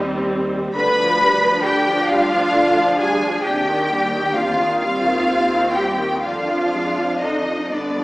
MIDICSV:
0, 0, Header, 1, 6, 480
1, 0, Start_track
1, 0, Key_signature, -3, "minor"
1, 0, Tempo, 884956
1, 413, Time_signature, 6, 3, 24, 8
1, 1367, Tempo, 916031
1, 2807, Tempo, 955414
1, 3287, Tempo, 998336
1, 4160, End_track
2, 0, Start_track
2, 0, Title_t, "Violin section"
2, 0, Program_c, 0, 48
2, 415, Note_on_c, 0, 83, 90
2, 868, Note_off_c, 0, 83, 0
2, 901, Note_on_c, 0, 79, 81
2, 1132, Note_off_c, 0, 79, 0
2, 1134, Note_on_c, 0, 77, 94
2, 1613, Note_off_c, 0, 77, 0
2, 1628, Note_on_c, 0, 80, 76
2, 1850, Note_on_c, 0, 79, 73
2, 1858, Note_off_c, 0, 80, 0
2, 2315, Note_off_c, 0, 79, 0
2, 2328, Note_on_c, 0, 77, 80
2, 2566, Note_off_c, 0, 77, 0
2, 2573, Note_on_c, 0, 77, 85
2, 3042, Note_off_c, 0, 77, 0
2, 3052, Note_on_c, 0, 79, 65
2, 3288, Note_on_c, 0, 77, 68
2, 3291, Note_off_c, 0, 79, 0
2, 3753, Note_off_c, 0, 77, 0
2, 3759, Note_on_c, 0, 75, 62
2, 3999, Note_off_c, 0, 75, 0
2, 4015, Note_on_c, 0, 74, 62
2, 4160, Note_off_c, 0, 74, 0
2, 4160, End_track
3, 0, Start_track
3, 0, Title_t, "Violin section"
3, 0, Program_c, 1, 48
3, 411, Note_on_c, 1, 83, 94
3, 866, Note_off_c, 1, 83, 0
3, 891, Note_on_c, 1, 79, 80
3, 1127, Note_off_c, 1, 79, 0
3, 1131, Note_on_c, 1, 77, 80
3, 1606, Note_on_c, 1, 80, 74
3, 1611, Note_off_c, 1, 77, 0
3, 1843, Note_off_c, 1, 80, 0
3, 1846, Note_on_c, 1, 79, 70
3, 2313, Note_off_c, 1, 79, 0
3, 2323, Note_on_c, 1, 77, 72
3, 2553, Note_off_c, 1, 77, 0
3, 2559, Note_on_c, 1, 77, 85
3, 3035, Note_off_c, 1, 77, 0
3, 3046, Note_on_c, 1, 79, 66
3, 3288, Note_off_c, 1, 79, 0
3, 3288, Note_on_c, 1, 77, 70
3, 3753, Note_off_c, 1, 77, 0
3, 3766, Note_on_c, 1, 75, 60
3, 4002, Note_on_c, 1, 74, 60
3, 4007, Note_off_c, 1, 75, 0
3, 4160, Note_off_c, 1, 74, 0
3, 4160, End_track
4, 0, Start_track
4, 0, Title_t, "Cello section"
4, 0, Program_c, 2, 48
4, 419, Note_on_c, 2, 71, 101
4, 870, Note_off_c, 2, 71, 0
4, 889, Note_on_c, 2, 67, 91
4, 1126, Note_off_c, 2, 67, 0
4, 1128, Note_on_c, 2, 65, 99
4, 1610, Note_off_c, 2, 65, 0
4, 1612, Note_on_c, 2, 68, 88
4, 1846, Note_off_c, 2, 68, 0
4, 1851, Note_on_c, 2, 67, 82
4, 2325, Note_off_c, 2, 67, 0
4, 2330, Note_on_c, 2, 65, 85
4, 2560, Note_off_c, 2, 65, 0
4, 2566, Note_on_c, 2, 65, 90
4, 3038, Note_off_c, 2, 65, 0
4, 3051, Note_on_c, 2, 67, 74
4, 3288, Note_on_c, 2, 65, 88
4, 3290, Note_off_c, 2, 67, 0
4, 3753, Note_off_c, 2, 65, 0
4, 3767, Note_on_c, 2, 63, 68
4, 4003, Note_off_c, 2, 63, 0
4, 4010, Note_on_c, 2, 62, 67
4, 4160, Note_off_c, 2, 62, 0
4, 4160, End_track
5, 0, Start_track
5, 0, Title_t, "Viola section"
5, 0, Program_c, 3, 48
5, 0, Note_on_c, 3, 55, 78
5, 0, Note_on_c, 3, 60, 80
5, 402, Note_off_c, 3, 55, 0
5, 403, Note_off_c, 3, 60, 0
5, 419, Note_on_c, 3, 50, 71
5, 422, Note_on_c, 3, 62, 77
5, 527, Note_off_c, 3, 50, 0
5, 548, Note_on_c, 3, 53, 66
5, 659, Note_off_c, 3, 53, 0
5, 662, Note_on_c, 3, 55, 58
5, 776, Note_off_c, 3, 55, 0
5, 783, Note_on_c, 3, 53, 60
5, 895, Note_off_c, 3, 53, 0
5, 899, Note_on_c, 3, 50, 63
5, 1012, Note_off_c, 3, 50, 0
5, 1012, Note_on_c, 3, 53, 64
5, 1128, Note_off_c, 3, 53, 0
5, 1137, Note_on_c, 3, 55, 67
5, 1251, Note_off_c, 3, 55, 0
5, 1251, Note_on_c, 3, 53, 62
5, 1371, Note_off_c, 3, 53, 0
5, 1381, Note_on_c, 3, 50, 64
5, 1495, Note_off_c, 3, 50, 0
5, 1497, Note_on_c, 3, 53, 66
5, 1613, Note_off_c, 3, 53, 0
5, 1621, Note_on_c, 3, 55, 63
5, 1735, Note_off_c, 3, 55, 0
5, 1735, Note_on_c, 3, 53, 61
5, 1852, Note_off_c, 3, 53, 0
5, 1856, Note_on_c, 3, 48, 67
5, 1963, Note_off_c, 3, 48, 0
5, 1979, Note_on_c, 3, 51, 62
5, 2092, Note_off_c, 3, 51, 0
5, 2099, Note_on_c, 3, 55, 62
5, 2211, Note_off_c, 3, 55, 0
5, 2215, Note_on_c, 3, 51, 55
5, 2329, Note_off_c, 3, 51, 0
5, 2331, Note_on_c, 3, 48, 61
5, 2448, Note_off_c, 3, 48, 0
5, 2454, Note_on_c, 3, 51, 58
5, 2548, Note_off_c, 3, 62, 0
5, 2569, Note_off_c, 3, 51, 0
5, 2578, Note_on_c, 3, 55, 63
5, 2581, Note_on_c, 3, 60, 71
5, 2693, Note_off_c, 3, 55, 0
5, 2696, Note_on_c, 3, 51, 57
5, 2813, Note_off_c, 3, 51, 0
5, 2822, Note_on_c, 3, 48, 52
5, 2934, Note_off_c, 3, 48, 0
5, 2937, Note_on_c, 3, 51, 60
5, 3052, Note_off_c, 3, 51, 0
5, 3067, Note_on_c, 3, 55, 54
5, 3174, Note_on_c, 3, 51, 53
5, 3178, Note_off_c, 3, 55, 0
5, 3291, Note_off_c, 3, 51, 0
5, 3296, Note_off_c, 3, 60, 0
5, 3297, Note_on_c, 3, 50, 63
5, 3300, Note_on_c, 3, 62, 65
5, 3401, Note_off_c, 3, 50, 0
5, 3416, Note_on_c, 3, 53, 53
5, 3528, Note_off_c, 3, 53, 0
5, 3535, Note_on_c, 3, 56, 50
5, 3648, Note_off_c, 3, 56, 0
5, 3653, Note_on_c, 3, 53, 47
5, 3768, Note_off_c, 3, 53, 0
5, 3778, Note_on_c, 3, 50, 53
5, 3892, Note_off_c, 3, 50, 0
5, 3894, Note_on_c, 3, 53, 46
5, 3998, Note_off_c, 3, 62, 0
5, 4011, Note_off_c, 3, 53, 0
5, 4012, Note_on_c, 3, 50, 52
5, 4013, Note_on_c, 3, 59, 55
5, 4122, Note_off_c, 3, 50, 0
5, 4136, Note_on_c, 3, 53, 46
5, 4160, Note_off_c, 3, 53, 0
5, 4160, Note_off_c, 3, 59, 0
5, 4160, End_track
6, 0, Start_track
6, 0, Title_t, "Double bass section"
6, 0, Program_c, 4, 48
6, 0, Note_on_c, 4, 39, 73
6, 392, Note_off_c, 4, 39, 0
6, 421, Note_on_c, 4, 38, 78
6, 1010, Note_off_c, 4, 38, 0
6, 1130, Note_on_c, 4, 38, 77
6, 1731, Note_off_c, 4, 38, 0
6, 1858, Note_on_c, 4, 39, 79
6, 2449, Note_off_c, 4, 39, 0
6, 2572, Note_on_c, 4, 39, 75
6, 3171, Note_off_c, 4, 39, 0
6, 3289, Note_on_c, 4, 41, 65
6, 3885, Note_off_c, 4, 41, 0
6, 4008, Note_on_c, 4, 43, 56
6, 4160, Note_off_c, 4, 43, 0
6, 4160, End_track
0, 0, End_of_file